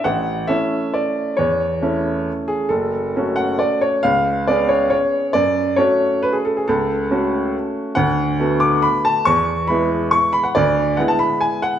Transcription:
<<
  \new Staff \with { instrumentName = "Upright piano" } { \time 3/4 \key a \major \tempo 4 = 137 fis''4 e''4 d''4 | cis''2 r8 gis'8 | a'4. fis''8 d''8 cis''8 | eis''4 d''8 cis''8 cis''4 |
d''4 cis''4 b'16 gis'16 a'16 gis'16 | a'2 r4 | fis''4. d'''8 b''8 a''8 | cis'''4 b''4 cis'''8 b''16 fis''16 |
d''4 fis''16 a''16 b''8 gis''8 fis''8 | }
  \new Staff \with { instrumentName = "Upright piano" } { \time 3/4 \key a \major a,,4 <a cis' e'>2 | e,4 <a cis' e'>2 | fis,,4 <a cis' fis'>2 | cis,4 <b cis' gis'>2 |
fis,4 <a cis' fis'>2 | cis,4 <a cis' fis'>2 | d,4 <a b fis'>2 | e,4 <gis b e'>2 |
d,4 <gis b e'>2 | }
>>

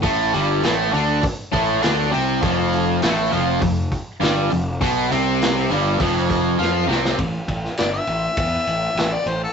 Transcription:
<<
  \new Staff \with { instrumentName = "Harmonica" } { \time 4/4 \key a \minor \tempo 4 = 101 r1 | r1 | r1 | r4 d''16 e''2 d''16 c''16 a'16 | }
  \new Staff \with { instrumentName = "Distorted electric guitar" } { \clef bass \time 4/4 \key a \minor <a, a>8 <g, g>8 <a, a>8 <d d'>8 r8 <a, a>8 <d d'>8 <c c'>8 | <f, f>4 <a, a>8 <f, f>8 f,8 r8 <g, g>8 f,8 | <b, b>8 <c c'>4 <g, g>8 <f, f>4 <f f'>8 <c c'>8 | r1 | }
  \new Staff \with { instrumentName = "Picked electric bass" } { \clef bass \time 4/4 \key a \minor a,,8 g,,8 a,,8 d,8 r8 a,,8 d,8 c,8 | f,,4 a,,8 f,,8 f,,8 r8 g,,8 f,,8 | b,,8 c,4 g,,8 f,,4 f,8 c,8 | a,,8 a,,8 g,,8 a,,8 e,8 a,,8 a,,8 a,,8 | }
  \new DrumStaff \with { instrumentName = "Drums" } \drummode { \time 4/4 <hho bd>8 hho8 <hho sn>8 hho8 <hho bd>8 <hho bd>8 <hho sn>8 hho8 | <hho bd>8 hho8 <hho sn>8 hho8 <hho bd>8 <hho bd>8 <hho sn>8 hho8 | <hho bd>8 hho8 <hho sn>8 hho8 <hho bd>8 <hho bd>8 sn8 sn16 sn16 | <bd cymr>8 <bd cymr>16 sn16 <cymr sn>8 cymr8 <bd cymr>8 cymr8 <cymr sn>8 cymr8 | }
>>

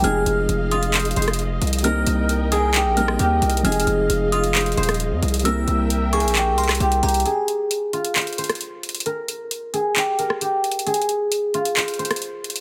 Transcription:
<<
  \new Staff \with { instrumentName = "Synth bell" } { \time 4/4 \key f \minor \tempo 4 = 133 f'''4. ees'''2~ ees'''8 | f'''4. ees'''4 f'''4. | f'''4. ees'''2~ ees'''8 | e'''4. des'''4 c'''4 bes''8 |
r1 | r1 | r1 | }
  \new Staff \with { instrumentName = "String section" } { \time 4/4 \key f \minor << { <aes' f''>1 | <bes' g''>1 | <aes' f''>1 | <bes' g''>1 |
r1 | r1 | r1 | } \\ { ees''1~ | ees''1~ | ees''1 | e''1 |
r1 | r1 | r1 | } >> }
  \new Staff \with { instrumentName = "Guzheng" } { \time 4/4 \key f \minor aes'4. f'8 c''8 c''4. | bes'4. aes'8 g'8 bes'8 g'4 | aes'4. f'8 c''8 c''4. | bes'4. aes'8 g'8 bes'8 g'8 g'8 |
aes'4. f'8 c''8 c''4. | bes'4. aes'8 g'8 bes'8 g'4 | aes'4. f'8 c''8 c''4. | }
  \new Staff \with { instrumentName = "Grand piano" } { \time 4/4 \key f \minor <f aes c' ees'>1 | <g bes c' ees'>2~ <g bes c' ees'>8 <g bes c' ees'>4. | <f aes c' ees'>1 | <g bes c' e'>1 |
r1 | r1 | r1 | }
  \new Staff \with { instrumentName = "808-style bass" } { \clef bass \time 4/4 \key f \minor f,,8 f,,8 f,,4. f,,4 c,8~ | c,8 c,4.~ c,16 bes,,8. ees,8 c,8 | f,,8 f,,8 f,,4. ees,,8. f,16 c,8~ | c,8 c,4~ c,16 bes,,8~ bes,,32 c,8~ c,32 c,8 c,8 |
r1 | r1 | r1 | }
  \new DrumStaff \with { instrumentName = "Drums" } \drummode { \time 4/4 hh8 hh8 hh8 hh16 hh16 <hc hh>32 hh32 hh32 hh32 hh32 hh32 <hh ss>32 hh32 hh8 hh32 hh32 hh32 hh32 | hh8 hh8 hh8 hh8 <hc hh>8 hh16 ss16 \tuplet 3/2 { hh16 r16 r16 hh16 hh16 hh16 } | \tuplet 3/2 { hh16 hh16 hh16 hh16 r16 r16 } hh8 hh16 hh16 <hc hh>32 hh32 hh32 hh32 hh32 hh32 <hh ss>32 hh32 hh8 hh32 hh32 hh32 hh32 | hh8 hh8 \tuplet 3/2 { hh16 r16 r16 hh16 hh16 hh16 } <hc hh>8 hh32 hh32 <hc hh ss>32 hh32 hh16 hh16 <hh hho>32 hh32 hh32 hh32 |
hh8 hh8 hh8 hh16 hh16 <hc hh>32 hh32 hh32 hh32 hh32 hh32 <hh ss>32 hh32 hh8 hh32 hh32 hh32 hh32 | hh8 hh8 hh8 hh8 <hc hh>8 hh16 ss16 \tuplet 3/2 { hh16 r16 r16 hh16 hh16 hh16 } | \tuplet 3/2 { hh16 hh16 hh16 hh16 r16 r16 } hh8 hh16 hh16 <hc hh>32 hh32 hh32 hh32 hh32 hh32 <hh ss>32 hh32 hh8 hh32 hh32 hh16 | }
>>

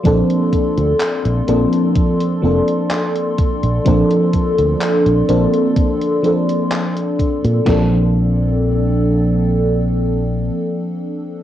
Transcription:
<<
  \new Staff \with { instrumentName = "Ambient pad" } { \time 4/4 \key bes \major \tempo 4 = 63 <a' d'' c'''>1~ | <a' d'' c'''>1 | <c' a' d''>1 | }
  \new Staff \with { instrumentName = "FM electric piano" } { \time 4/4 \key bes \major <f bes c' d' a'>4. <f bes c' d' a'>4 <f bes c' d' a'>4. | <f bes c' d' a'>4. <f bes c' d' a'>4 <f bes c' d' a'>4. | <f bes c' d' a'>1 | }
  \new Staff \with { instrumentName = "Fingered electric bass" } { \clef bass \time 4/4 \key bes \major bes,,16 r8 d,16 r16 bes,,16 bes,,16 r8. f,,16 r4 bes,,16 | bes,,16 r8 d,16 r16 bes,,16 bes,,16 r2 bes,16 | bes,,2. r4 | }
  \new DrumStaff \with { instrumentName = "Drums" } \drummode { \time 4/4 <hh bd>16 hh16 <hh bd>16 hh16 <hc hh>16 hh16 hh16 hh16 <hh bd>16 hh8 hh16 <hc hh>16 hh16 <hh bd>16 hh16 | <hh bd>16 hh16 <hh bd>16 hh16 <hc hh>16 hh16 hh16 hh16 <hh bd>16 hh16 hh16 hh16 <hc hh>16 hh16 <hh bd>16 hh16 | <hc bd sn>4 r4 r4 r4 | }
>>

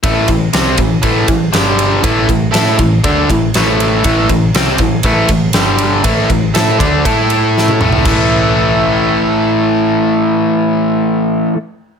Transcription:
<<
  \new Staff \with { instrumentName = "Overdriven electric guitar" } { \clef bass \time 4/4 \key a \minor \tempo 4 = 120 <a, e a>8 <a, e>8 <c g c'>8 <a, e>8 <a, e a>8 <a, e>8 <g, d g>4 | <a, e a>8 <a, e>8 <a e' a'>8 <a, e>8 <d a d'>8 <a, e>8 <a, e a>4 | <a, e a>8 <a, e>8 <c g c'>8 <a, e>8 <a, e a>8 <a, e>8 <g, d g>4 | <a, e a>8 <a, e>8 <a e' a'>8 <d a d'>8 <a e' a'>4. <a, e a>8 |
<a, e a>1~ | <a, e a>1 | }
  \new Staff \with { instrumentName = "Picked electric bass" } { \clef bass \time 4/4 \key a \minor a,,8 a,,8 c,8 a,,8 a,,8 a,,8 g,,4 | a,,8 a,,8 a,8 a,,8 d,8 a,,8 a,,4 | a,,8 a,,8 c,8 a,,8 a,,8 a,,8 g,,4 | a,,8 a,,8 a,8 d,8 a,4. a,,8 |
a,,1~ | a,,1 | }
  \new DrumStaff \with { instrumentName = "Drums" } \drummode { \time 4/4 <bd cymr>8 <bd cymr>8 <cymr sn>8 <bd cymr>8 <bd cymr>8 <bd cymr>8 <cymr sn>8 cymr8 | <bd cymr>8 <bd cymr>8 <cymr sn>8 <bd cymr>8 <bd cymr>8 <bd cymr>8 <cymr sn>8 cymr8 | <bd cymr>8 <bd cymr>8 <cymr sn>8 <bd cymr>8 <bd cymr>8 <bd cymr>8 <cymr sn>8 cymr8 | <bd cymr>8 <bd cymr>8 <cymr sn>8 <bd cymr>8 <bd cymr>8 cymr8 sn16 tommh16 toml16 tomfh16 |
<cymc bd>4 r4 r4 r4 | r4 r4 r4 r4 | }
>>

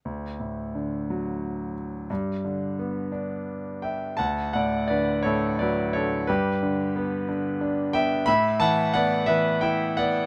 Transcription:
<<
  \new Staff \with { instrumentName = "Grand piano" } { \time 6/8 \key d \major \tempo 4. = 59 r2. | r2 r8 <e'' g''>8 | <fis'' a''>8 <d'' fis''>8 <b' d''>8 <a' cis''>8 <b' d''>8 <a' cis''>8 | <g' b'>2~ <g' b'>8 <e'' g''>8 |
<e'' b''>8 <fis'' a''>8 <d'' fis''>8 <b' e''>8 <e'' g''>8 <d'' fis''>8 | }
  \new Staff \with { instrumentName = "Grand piano" } { \clef bass \time 6/8 \key d \major d,8 a,8 d8 fis4. | g,8 d8 b8 d'4. | d,8 a,8 d8 a,8 fis8 d8 | g,8 d8 b8 d8 d'8 b8 |
a,8 e8 b8 e8 e'8 b8 | }
>>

